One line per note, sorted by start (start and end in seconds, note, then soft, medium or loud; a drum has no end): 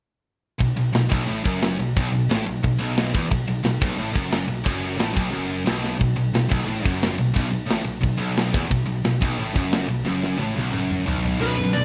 0.59 0.73 B1 medium
0.59 0.76 B1 medium
0.59 kick medium
0.59 crash medium
0.76 0.90 B1 medium
0.76 0.93 B1 medium
0.76 crash medium
0.93 1.07 B1 medium
0.93 1.10 B1 medium
0.93 snare loud
0.93 crash medium
1.09 1.26 B1 loud
1.09 1.27 B1 loud
1.09 kick loud
1.09 crash medium
1.26 1.44 A1 medium
1.26 1.43 A2 loud
1.26 crash medium
1.44 1.77 F#1 medium
1.44 1.77 F#2 loud
1.44 kick medium
1.44 crash medium
1.63 snare loud
1.63 crash medium
1.79 1.94 B1 medium
1.79 1.92 B1 medium
1.79 crash medium
1.97 2.11 B1 loud
1.97 2.12 B1 medium
1.97 kick loud
1.97 crash medium
2.12 2.26 B1 medium
2.12 2.28 B1 medium
2.12 crash medium
2.29 2.45 A1 medium
2.29 2.46 A2 loud
2.29 snare loud
2.29 crash medium
2.46 2.60 B1 medium
2.46 2.62 B1 medium
2.46 crash medium
2.63 2.77 B1 medium
2.63 2.79 B1 medium
2.63 kick medium
2.63 crash medium
2.78 3.12 B1 loud
2.78 3.12 B1 medium
2.78 crash medium
2.98 snare loud
2.98 crash medium
3.14 3.30 E1 medium
3.14 3.30 E2 loud
3.14 kick loud
3.14 crash medium
3.30 3.44 B1 medium
3.30 3.46 B1 medium
3.30 kick loud
3.30 crash medium
3.47 3.61 B1 medium
3.47 3.63 B1 medium
3.47 crash medium
3.63 3.77 B1 medium
3.63 3.80 B1 medium
3.63 snare loud
3.63 crash medium
3.81 3.97 B1 loud
3.81 kick loud
3.81 crash medium
3.98 4.15 A1 medium
3.98 4.13 A2 loud
3.98 crash medium
4.13 4.47 F#1 loud
4.13 4.47 F#2 loud
4.13 kick loud
4.13 crash medium
4.32 snare loud
4.32 crash medium
4.48 4.64 B1 medium
4.48 4.65 B1 medium
4.48 crash medium
4.64 4.97 F#1 medium
4.64 4.97 F#2 loud
4.64 kick loud
4.64 crash medium
4.83 crash medium
4.97 5.15 A1 loud
4.97 5.13 A2 medium
4.97 snare loud
4.97 crash medium
5.13 5.31 B1 loud
5.13 5.32 B1 medium
5.13 kick loud
5.13 crash medium
5.31 5.65 F#1 medium
5.31 5.65 F#2 loud
5.31 crash medium
5.50 crash medium
5.66 5.98 B1 loud
5.66 snare loud
5.66 crash medium
5.84 snare medium
5.99 6.14 B1 medium
5.99 6.16 B1 medium
5.99 kick medium
5.99 crash medium
6.16 6.30 B1 medium
6.16 6.33 B1 medium
6.16 crash medium
6.34 6.48 B1 medium
6.34 6.50 B1 medium
6.34 snare loud
6.34 crash medium
6.49 6.65 B1 loud
6.49 6.67 B1 medium
6.49 kick loud
6.49 crash medium
6.65 6.84 A1 medium
6.65 6.83 A2 loud
6.65 crash medium
6.83 7.17 F#1 loud
6.83 7.17 F#2 loud
6.83 kick loud
6.83 crash medium
7.03 snare loud
7.03 crash medium
7.18 7.32 B1 medium
7.18 7.35 B1 medium
7.18 crash medium
7.34 7.49 B1 loud
7.34 7.52 B1 medium
7.34 kick loud
7.34 crash medium
7.50 7.65 B1 medium
7.50 7.69 B1 medium
7.50 crash medium
7.66 7.85 A1 loud
7.66 7.84 A2 medium
7.66 crash medium
7.71 snare loud
7.84 7.99 B1 medium
7.84 8.02 B1 medium
7.84 crash medium
8.01 8.16 B1 medium
8.01 8.19 B1 medium
8.01 kick medium
8.01 crash medium
8.05 8.18 B1 medium
8.17 8.52 B1 loud
8.17 8.52 B1 medium
8.17 crash medium
8.22 8.54 B1 loud
8.38 snare loud
8.38 crash medium
8.52 8.70 E1 loud
8.52 8.69 E2 loud
8.52 kick loud
8.52 crash medium
8.69 8.84 B1 medium
8.69 8.86 B1 medium
8.69 kick medium
8.69 crash medium
8.86 9.00 B1 medium
8.86 9.03 B1 medium
8.86 crash medium
9.05 9.20 B1 medium
9.05 9.18 B1 medium
9.05 snare loud
9.05 crash medium
9.21 9.38 B1 loud
9.21 9.38 B1 medium
9.21 kick loud
9.21 crash medium
9.38 9.54 A1 loud
9.38 9.54 A2 loud
9.38 crash medium
9.54 9.87 F#1 medium
9.54 9.88 F#2 loud
9.54 kick loud
9.54 crash medium
9.73 snare loud
9.73 crash medium
9.88 10.02 B1 medium
9.88 10.05 B1 medium
9.88 crash medium
10.05 10.37 F#1 medium
10.05 10.38 F#2 loud
10.05 snare medium
10.23 snare medium
10.39 10.55 A1 loud
10.39 10.55 A2 medium
10.39 high tom medium
10.55 10.71 B1 medium
10.55 10.72 B1 medium
10.55 high tom medium
10.72 11.04 F#1 medium
10.72 11.05 F#2 loud
10.72 mid tom medium
10.91 mid tom medium
11.06 11.37 B1 loud
11.06 11.39 B1 loud
11.06 floor tom loud
11.25 floor tom medium
11.38 11.55 B1 loud
11.38 11.55 F#2 medium
11.38 11.56 B2 loud
11.38 11.85 D3 medium
11.38 11.85 F#3 medium
11.38 11.85 B3 medium
11.38 11.85 B4 loud
11.38 11.76 B4 medium
11.42 11.85 D4 loud
11.56 11.63 B1 medium
11.56 11.72 B1 medium
11.56 11.62 F#2 medium
11.63 11.72 B1 medium
11.63 11.73 F#2 medium
11.73 11.85 B1 medium
11.73 11.85 B1 loud
11.73 11.85 F#2 medium
11.73 11.85 D5 loud